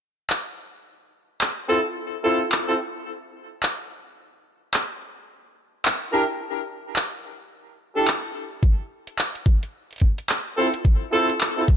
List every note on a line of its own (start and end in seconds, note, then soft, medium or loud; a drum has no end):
0.30 clap loud
1.41 clap loud
1.69 1.80 C4 medium
1.69 1.80 E4 medium
1.69 1.80 F4 medium
1.69 1.80 A4 loud
2.24 2.41 C4 medium
2.24 2.41 E4 medium
2.24 2.41 F4 medium
2.24 2.41 A4 loud
2.52 clap loud
2.68 2.76 C4 medium
2.68 2.76 E4 medium
2.68 2.76 F4 medium
2.68 2.76 A4 medium
3.63 clap loud
4.74 clap loud
5.85 clap loud
6.12 6.24 D4 medium
6.12 6.24 E4 medium
6.12 6.24 G4 medium
6.12 6.24 A#4 loud
6.96 clap loud
7.96 8.08 D4 medium
7.96 8.08 E4 medium
7.96 8.08 G4 medium
7.96 8.08 A4 medium
8.08 clap loud
8.63 kick loud
9.07 closed hi-hat medium
9.19 clap loud
9.35 closed hi-hat soft
9.46 kick loud
9.63 closed hi-hat medium
9.91 closed hi-hat soft
9.93 closed hi-hat soft
9.96 closed hi-hat soft
9.98 closed hi-hat soft
10.00 kick medium
10.00 closed hi-hat soft
10.18 closed hi-hat medium
10.29 clap loud
10.57 10.68 C4 medium
10.57 10.68 E4 medium
10.57 10.68 F4 medium
10.57 10.68 A4 loud
10.74 closed hi-hat medium
10.85 kick loud
11.13 11.30 C4 medium
11.13 11.30 E4 medium
11.13 11.30 F4 medium
11.13 11.30 A4 loud
11.30 closed hi-hat medium
11.41 clap loud
11.57 11.65 C4 medium
11.57 11.65 E4 medium
11.57 11.65 F4 medium
11.57 11.65 A4 medium
11.68 kick loud